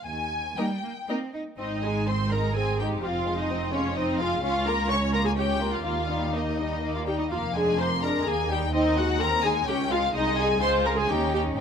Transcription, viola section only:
0.58 0.66 A#3 soft
0.58 0.66 D#4 soft
1.09 1.17 A#3 soft
1.09 1.17 D#4 soft
1.59 1.82 D#4 soft
1.84 2.07 G#4 soft
2.07 2.30 C5 soft
2.31 2.55 A#4 soft
2.56 2.79 G#4 soft
2.80 3.03 G4 soft
3.04 3.39 F4 soft
3.39 3.73 D#4 soft
3.74 3.97 C#4 soft
3.97 4.20 D#4 soft
4.20 4.42 F4 soft
4.44 4.67 F4 medium
4.67 4.90 A#4 soft
4.90 5.13 C#5 medium
5.13 5.18 A#4 soft
5.25 5.29 G#4 soft
5.36 5.72 G4 soft
5.72 5.83 F4 soft
5.85 6.33 F4 soft
6.34 6.94 D#4 soft
6.95 7.00 F4 soft
7.07 7.12 G4 soft
7.19 7.24 D#4 soft
7.31 7.39 F4 soft
7.55 7.79 G#4 soft
7.79 7.87 C5 soft
8.03 8.27 A#4 soft
8.27 8.51 G#4 soft
8.51 8.59 G4 soft
8.74 8.97 D#4 medium
8.98 9.21 F#4 soft
9.21 9.44 A#4 medium
9.44 9.52 G#4 soft
9.68 9.76 G4 medium
9.91 9.99 F4 medium
10.15 10.38 D#4 medium
10.39 10.61 G#4 soft
10.62 10.85 C5 medium
10.86 10.98 A#4 soft
10.98 11.09 G#4 soft
11.10 11.32 G4 medium
11.33 11.41 G4 soft

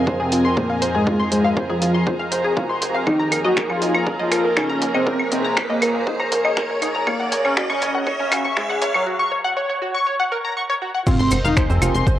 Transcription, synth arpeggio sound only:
0.07 0.19 C5 loud
0.20 0.28 G#4 loud
0.32 0.44 F4 medium
0.45 0.56 C6 loud
0.57 0.65 C5 medium
0.70 0.74 F5 loud
0.82 0.94 C5 loud
0.95 1.03 G#4 loud
1.07 1.19 F4 medium
1.20 1.31 C6 loud
1.32 1.40 C5 medium
1.45 1.49 F5 loud
1.57 1.69 C5 loud
1.70 1.78 G#4 loud
1.82 1.94 F4 medium
1.95 2.06 C6 loud
2.07 2.15 C5 medium
2.20 2.25 F5 loud
2.32 2.44 C5 medium
2.45 2.53 G#4 loud
2.57 2.69 F4 medium
2.69 2.81 C6 loud
2.82 2.90 C5 medium
2.94 2.99 F5 loud
3.07 3.19 D#4 medium
3.19 3.31 A#5 loud
3.32 3.40 A#4 medium
3.44 3.49 D#5 loud
3.57 3.68 A#4 loud
3.70 3.78 A#4 medium
3.82 3.94 D#4 medium
3.95 4.06 A#5 loud
4.07 4.15 A#4 medium
4.20 4.24 D#5 loud
4.32 4.43 A#4 loud
4.45 4.53 A#4 medium
4.57 4.69 D#4 medium
4.70 4.81 A#5 loud
4.82 4.90 A#4 medium
4.95 4.99 D#5 loud
5.07 5.18 A#4 loud
5.20 5.28 A#4 medium
5.32 5.44 D#4 medium
5.44 5.56 A#5 loud
5.57 5.65 A#4 medium
5.70 5.74 D#5 loud
5.82 5.93 A#4 loud
5.95 6.03 A#4 medium
6.07 6.19 D#4 medium
6.20 6.31 A#5 loud
6.32 6.40 A#4 medium
6.45 6.49 D#5 loud
6.57 6.68 A#4 loud
6.70 6.78 A#4 medium
6.82 6.94 D#4 medium
6.95 7.06 A#5 loud
7.07 7.15 C#5 medium
7.20 7.25 F#5 loud
7.32 7.43 C#5 loud
7.45 7.53 C#5 medium
7.57 7.69 F#4 medium
7.70 7.81 C#6 loud
7.82 7.90 C#5 medium
7.95 8.00 F#5 loud
8.07 8.18 C#5 loud
8.20 8.28 C#5 medium
8.32 8.44 F#4 medium
8.45 8.56 C#6 loud
8.57 8.65 C#5 medium
8.70 8.75 F#5 medium
8.82 8.93 C#5 loud
8.95 9.03 C#5 medium
9.07 9.19 F#4 medium
9.20 9.31 C#6 loud
9.32 9.40 C#5 medium
9.45 9.50 F#5 loud
9.57 9.68 C#5 loud
9.70 9.78 C#5 medium
9.82 9.94 F#4 medium
9.95 10.06 C#6 loud
10.07 10.15 C#5 medium
10.20 10.25 F#5 loud
10.32 10.37 A#4 loud
10.45 10.53 A#5 medium
10.57 10.62 C#6 medium
10.70 10.75 C#5 loud
10.82 10.90 F#4 medium
10.95 11.00 F#5 medium
11.07 11.19 F4 medium
11.20 11.31 C6 loud
11.32 11.40 C5 medium
11.45 11.50 F5 loud
11.57 11.68 C5 loud
11.70 11.78 C5 medium
11.82 11.94 F4 medium
11.95 12.06 C6 loud
12.07 12.15 C5 medium

